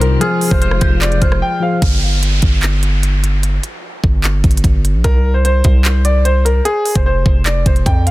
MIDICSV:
0, 0, Header, 1, 8, 480
1, 0, Start_track
1, 0, Tempo, 402685
1, 252, Time_signature, 4, 2, 24, 8
1, 9665, End_track
2, 0, Start_track
2, 0, Title_t, "Synth bell"
2, 0, Program_c, 0, 98
2, 0, Note_on_c, 0, 84, 83
2, 203, Note_off_c, 0, 84, 0
2, 249, Note_on_c, 0, 89, 102
2, 701, Note_off_c, 0, 89, 0
2, 730, Note_on_c, 0, 89, 81
2, 958, Note_off_c, 0, 89, 0
2, 970, Note_on_c, 0, 91, 89
2, 1422, Note_off_c, 0, 91, 0
2, 1450, Note_on_c, 0, 89, 78
2, 2127, Note_off_c, 0, 89, 0
2, 9665, End_track
3, 0, Start_track
3, 0, Title_t, "Grand piano"
3, 0, Program_c, 1, 0
3, 11, Note_on_c, 1, 70, 83
3, 230, Note_off_c, 1, 70, 0
3, 250, Note_on_c, 1, 68, 102
3, 589, Note_off_c, 1, 68, 0
3, 610, Note_on_c, 1, 72, 74
3, 716, Note_off_c, 1, 72, 0
3, 734, Note_on_c, 1, 72, 87
3, 1184, Note_off_c, 1, 72, 0
3, 1207, Note_on_c, 1, 74, 88
3, 1428, Note_off_c, 1, 74, 0
3, 1456, Note_on_c, 1, 72, 69
3, 1673, Note_off_c, 1, 72, 0
3, 1694, Note_on_c, 1, 79, 84
3, 1912, Note_off_c, 1, 79, 0
3, 1936, Note_on_c, 1, 77, 77
3, 2153, Note_off_c, 1, 77, 0
3, 6010, Note_on_c, 1, 70, 107
3, 6349, Note_off_c, 1, 70, 0
3, 6366, Note_on_c, 1, 72, 76
3, 6475, Note_off_c, 1, 72, 0
3, 6493, Note_on_c, 1, 72, 94
3, 7169, Note_off_c, 1, 72, 0
3, 7210, Note_on_c, 1, 74, 83
3, 7430, Note_off_c, 1, 74, 0
3, 7449, Note_on_c, 1, 72, 87
3, 7669, Note_off_c, 1, 72, 0
3, 7690, Note_on_c, 1, 70, 78
3, 7910, Note_off_c, 1, 70, 0
3, 7929, Note_on_c, 1, 68, 103
3, 8268, Note_off_c, 1, 68, 0
3, 8415, Note_on_c, 1, 72, 82
3, 8864, Note_off_c, 1, 72, 0
3, 8888, Note_on_c, 1, 74, 82
3, 9109, Note_off_c, 1, 74, 0
3, 9135, Note_on_c, 1, 72, 68
3, 9352, Note_off_c, 1, 72, 0
3, 9372, Note_on_c, 1, 79, 78
3, 9591, Note_off_c, 1, 79, 0
3, 9614, Note_on_c, 1, 77, 76
3, 9665, Note_off_c, 1, 77, 0
3, 9665, End_track
4, 0, Start_track
4, 0, Title_t, "Tine electric piano"
4, 0, Program_c, 2, 4
4, 0, Control_c, 2, 64, 127
4, 0, Note_on_c, 2, 48, 54
4, 0, Note_on_c, 2, 55, 54
4, 0, Note_on_c, 2, 63, 48
4, 0, Note_on_c, 2, 65, 58
4, 0, Note_on_c, 2, 72, 75
4, 220, Note_on_c, 2, 53, 70
4, 227, Note_off_c, 2, 65, 0
4, 241, Note_off_c, 2, 48, 0
4, 241, Note_on_c, 2, 65, 64
4, 246, Note_off_c, 2, 55, 0
4, 251, Note_off_c, 2, 63, 0
4, 261, Note_on_c, 2, 68, 64
4, 265, Control_c, 2, 64, 0
4, 267, Note_off_c, 2, 72, 0
4, 283, Note_on_c, 2, 72, 69
4, 501, Control_c, 2, 64, 127
4, 1882, Note_off_c, 2, 53, 0
4, 1892, Note_off_c, 2, 65, 0
4, 1903, Note_off_c, 2, 68, 0
4, 1909, Note_on_c, 2, 53, 52
4, 1914, Note_off_c, 2, 72, 0
4, 1919, Note_on_c, 2, 65, 47
4, 1929, Note_on_c, 2, 68, 50
4, 1940, Note_on_c, 2, 72, 63
4, 2160, Note_off_c, 2, 53, 0
4, 2165, Note_off_c, 2, 65, 0
4, 2170, Note_off_c, 2, 68, 0
4, 2176, Note_off_c, 2, 72, 0
4, 2184, Control_c, 2, 64, 0
4, 9665, End_track
5, 0, Start_track
5, 0, Title_t, "String section"
5, 0, Program_c, 3, 48
5, 0, Note_on_c, 3, 51, 81
5, 0, Note_on_c, 3, 55, 77
5, 0, Note_on_c, 3, 60, 78
5, 0, Note_on_c, 3, 67, 97
5, 203, Note_off_c, 3, 55, 0
5, 231, Note_off_c, 3, 51, 0
5, 231, Note_off_c, 3, 67, 0
5, 232, Note_off_c, 3, 60, 0
5, 254, Note_on_c, 3, 48, 84
5, 254, Note_on_c, 3, 56, 78
5, 254, Note_on_c, 3, 65, 92
5, 255, Note_on_c, 3, 53, 79
5, 2153, Note_off_c, 3, 48, 0
5, 2154, Note_off_c, 3, 53, 0
5, 2154, Note_off_c, 3, 56, 0
5, 2154, Note_off_c, 3, 65, 0
5, 9665, End_track
6, 0, Start_track
6, 0, Title_t, "808-style bass"
6, 0, Program_c, 4, 38
6, 0, Note_on_c, 4, 36, 106
6, 203, Note_off_c, 4, 36, 0
6, 612, Note_on_c, 4, 29, 104
6, 957, Note_off_c, 4, 29, 0
6, 972, Note_on_c, 4, 29, 104
6, 1432, Note_off_c, 4, 29, 0
6, 1450, Note_on_c, 4, 29, 105
6, 1681, Note_off_c, 4, 29, 0
6, 2171, Note_on_c, 4, 31, 103
6, 2862, Note_off_c, 4, 31, 0
6, 2891, Note_on_c, 4, 31, 103
6, 4283, Note_off_c, 4, 31, 0
6, 4812, Note_on_c, 4, 31, 103
6, 5272, Note_off_c, 4, 31, 0
6, 5291, Note_on_c, 4, 31, 103
6, 5522, Note_off_c, 4, 31, 0
6, 5530, Note_on_c, 4, 31, 110
6, 5890, Note_on_c, 4, 34, 100
6, 5908, Note_off_c, 4, 31, 0
6, 6005, Note_off_c, 4, 34, 0
6, 6011, Note_on_c, 4, 36, 106
6, 6702, Note_off_c, 4, 36, 0
6, 6731, Note_on_c, 4, 36, 102
6, 7883, Note_off_c, 4, 36, 0
6, 8290, Note_on_c, 4, 29, 102
6, 8636, Note_off_c, 4, 29, 0
6, 8651, Note_on_c, 4, 29, 105
6, 9112, Note_off_c, 4, 29, 0
6, 9130, Note_on_c, 4, 29, 100
6, 9361, Note_off_c, 4, 29, 0
6, 9369, Note_on_c, 4, 41, 104
6, 9665, Note_off_c, 4, 41, 0
6, 9665, End_track
7, 0, Start_track
7, 0, Title_t, "Downlifter"
7, 0, Program_c, 5, 103
7, 2172, Note_on_c, 5, 60, 82
7, 6011, Note_off_c, 5, 60, 0
7, 9665, End_track
8, 0, Start_track
8, 0, Title_t, "Drums"
8, 18, Note_on_c, 9, 42, 73
8, 137, Note_off_c, 9, 42, 0
8, 252, Note_on_c, 9, 42, 81
8, 371, Note_off_c, 9, 42, 0
8, 493, Note_on_c, 9, 46, 78
8, 611, Note_on_c, 9, 36, 97
8, 612, Note_off_c, 9, 46, 0
8, 730, Note_off_c, 9, 36, 0
8, 735, Note_on_c, 9, 42, 88
8, 851, Note_on_c, 9, 37, 94
8, 854, Note_off_c, 9, 42, 0
8, 967, Note_on_c, 9, 42, 69
8, 970, Note_off_c, 9, 37, 0
8, 972, Note_on_c, 9, 36, 101
8, 973, Note_on_c, 9, 37, 71
8, 1087, Note_off_c, 9, 42, 0
8, 1091, Note_off_c, 9, 36, 0
8, 1092, Note_off_c, 9, 37, 0
8, 1210, Note_on_c, 9, 39, 112
8, 1211, Note_on_c, 9, 42, 64
8, 1330, Note_off_c, 9, 39, 0
8, 1330, Note_off_c, 9, 42, 0
8, 1332, Note_on_c, 9, 42, 38
8, 1450, Note_off_c, 9, 42, 0
8, 1450, Note_on_c, 9, 42, 74
8, 1451, Note_on_c, 9, 36, 91
8, 1569, Note_off_c, 9, 42, 0
8, 1570, Note_off_c, 9, 36, 0
8, 1571, Note_on_c, 9, 37, 105
8, 1691, Note_off_c, 9, 37, 0
8, 2171, Note_on_c, 9, 36, 105
8, 2171, Note_on_c, 9, 42, 79
8, 2290, Note_off_c, 9, 36, 0
8, 2290, Note_off_c, 9, 42, 0
8, 2655, Note_on_c, 9, 42, 83
8, 2774, Note_off_c, 9, 42, 0
8, 2886, Note_on_c, 9, 42, 64
8, 2891, Note_on_c, 9, 36, 102
8, 3005, Note_off_c, 9, 42, 0
8, 3010, Note_off_c, 9, 36, 0
8, 3131, Note_on_c, 9, 39, 114
8, 3133, Note_on_c, 9, 42, 65
8, 3250, Note_off_c, 9, 39, 0
8, 3252, Note_off_c, 9, 42, 0
8, 3371, Note_on_c, 9, 42, 67
8, 3490, Note_off_c, 9, 42, 0
8, 3614, Note_on_c, 9, 42, 74
8, 3733, Note_off_c, 9, 42, 0
8, 3858, Note_on_c, 9, 42, 76
8, 3977, Note_off_c, 9, 42, 0
8, 4092, Note_on_c, 9, 42, 82
8, 4211, Note_off_c, 9, 42, 0
8, 4333, Note_on_c, 9, 42, 68
8, 4452, Note_off_c, 9, 42, 0
8, 4811, Note_on_c, 9, 36, 99
8, 4930, Note_off_c, 9, 36, 0
8, 5052, Note_on_c, 9, 39, 115
8, 5054, Note_on_c, 9, 42, 67
8, 5171, Note_off_c, 9, 39, 0
8, 5173, Note_off_c, 9, 42, 0
8, 5291, Note_on_c, 9, 36, 92
8, 5292, Note_on_c, 9, 42, 43
8, 5373, Note_off_c, 9, 42, 0
8, 5373, Note_on_c, 9, 42, 60
8, 5410, Note_off_c, 9, 36, 0
8, 5452, Note_off_c, 9, 42, 0
8, 5452, Note_on_c, 9, 42, 77
8, 5530, Note_on_c, 9, 36, 96
8, 5534, Note_off_c, 9, 42, 0
8, 5534, Note_on_c, 9, 42, 73
8, 5650, Note_off_c, 9, 36, 0
8, 5653, Note_off_c, 9, 42, 0
8, 5778, Note_on_c, 9, 42, 75
8, 5897, Note_off_c, 9, 42, 0
8, 6011, Note_on_c, 9, 36, 109
8, 6012, Note_on_c, 9, 42, 79
8, 6131, Note_off_c, 9, 36, 0
8, 6131, Note_off_c, 9, 42, 0
8, 6495, Note_on_c, 9, 42, 82
8, 6615, Note_off_c, 9, 42, 0
8, 6725, Note_on_c, 9, 42, 64
8, 6731, Note_on_c, 9, 36, 100
8, 6844, Note_off_c, 9, 42, 0
8, 6850, Note_off_c, 9, 36, 0
8, 6970, Note_on_c, 9, 39, 115
8, 6972, Note_on_c, 9, 42, 65
8, 7089, Note_off_c, 9, 39, 0
8, 7091, Note_off_c, 9, 42, 0
8, 7209, Note_on_c, 9, 42, 72
8, 7328, Note_off_c, 9, 42, 0
8, 7453, Note_on_c, 9, 42, 72
8, 7572, Note_off_c, 9, 42, 0
8, 7698, Note_on_c, 9, 42, 76
8, 7817, Note_off_c, 9, 42, 0
8, 7931, Note_on_c, 9, 42, 79
8, 8050, Note_off_c, 9, 42, 0
8, 8171, Note_on_c, 9, 42, 43
8, 8173, Note_on_c, 9, 46, 77
8, 8290, Note_off_c, 9, 42, 0
8, 8290, Note_on_c, 9, 36, 95
8, 8290, Note_on_c, 9, 42, 76
8, 8292, Note_off_c, 9, 46, 0
8, 8409, Note_off_c, 9, 36, 0
8, 8409, Note_off_c, 9, 42, 0
8, 8651, Note_on_c, 9, 36, 101
8, 8770, Note_off_c, 9, 36, 0
8, 8889, Note_on_c, 9, 39, 112
8, 8892, Note_on_c, 9, 42, 67
8, 9009, Note_off_c, 9, 39, 0
8, 9011, Note_off_c, 9, 42, 0
8, 9130, Note_on_c, 9, 36, 93
8, 9130, Note_on_c, 9, 42, 69
8, 9249, Note_off_c, 9, 36, 0
8, 9249, Note_off_c, 9, 42, 0
8, 9250, Note_on_c, 9, 42, 44
8, 9369, Note_off_c, 9, 42, 0
8, 9370, Note_on_c, 9, 36, 96
8, 9372, Note_on_c, 9, 42, 74
8, 9489, Note_off_c, 9, 36, 0
8, 9491, Note_off_c, 9, 42, 0
8, 9617, Note_on_c, 9, 42, 76
8, 9665, Note_off_c, 9, 42, 0
8, 9665, End_track
0, 0, End_of_file